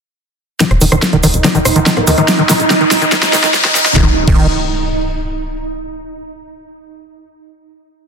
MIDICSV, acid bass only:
0, 0, Header, 1, 2, 480
1, 0, Start_track
1, 0, Tempo, 419580
1, 691, Time_signature, 4, 2, 24, 8
1, 9238, End_track
2, 0, Start_track
2, 0, Title_t, "Acid bass"
2, 0, Program_c, 0, 38
2, 691, Note_on_c, 0, 51, 83
2, 734, Note_off_c, 0, 51, 0
2, 931, Note_on_c, 0, 51, 78
2, 974, Note_off_c, 0, 51, 0
2, 1051, Note_on_c, 0, 51, 79
2, 1094, Note_off_c, 0, 51, 0
2, 1292, Note_on_c, 0, 51, 78
2, 1334, Note_off_c, 0, 51, 0
2, 1411, Note_on_c, 0, 51, 78
2, 1454, Note_off_c, 0, 51, 0
2, 1651, Note_on_c, 0, 51, 81
2, 1694, Note_off_c, 0, 51, 0
2, 1771, Note_on_c, 0, 51, 75
2, 1814, Note_off_c, 0, 51, 0
2, 2011, Note_on_c, 0, 51, 72
2, 2054, Note_off_c, 0, 51, 0
2, 2132, Note_on_c, 0, 51, 89
2, 2175, Note_off_c, 0, 51, 0
2, 2372, Note_on_c, 0, 51, 78
2, 2414, Note_off_c, 0, 51, 0
2, 2492, Note_on_c, 0, 51, 76
2, 2535, Note_off_c, 0, 51, 0
2, 2732, Note_on_c, 0, 51, 78
2, 2774, Note_off_c, 0, 51, 0
2, 2852, Note_on_c, 0, 51, 76
2, 2894, Note_off_c, 0, 51, 0
2, 3091, Note_on_c, 0, 51, 88
2, 3134, Note_off_c, 0, 51, 0
2, 3212, Note_on_c, 0, 51, 78
2, 3254, Note_off_c, 0, 51, 0
2, 3451, Note_on_c, 0, 51, 75
2, 3494, Note_off_c, 0, 51, 0
2, 3572, Note_on_c, 0, 51, 80
2, 3614, Note_off_c, 0, 51, 0
2, 3812, Note_on_c, 0, 51, 79
2, 3854, Note_off_c, 0, 51, 0
2, 3932, Note_on_c, 0, 51, 75
2, 3974, Note_off_c, 0, 51, 0
2, 4171, Note_on_c, 0, 51, 81
2, 4214, Note_off_c, 0, 51, 0
2, 4291, Note_on_c, 0, 51, 82
2, 4334, Note_off_c, 0, 51, 0
2, 4531, Note_on_c, 0, 51, 99
2, 4665, Note_off_c, 0, 51, 0
2, 4891, Note_on_c, 0, 51, 95
2, 5115, Note_off_c, 0, 51, 0
2, 9238, End_track
0, 0, End_of_file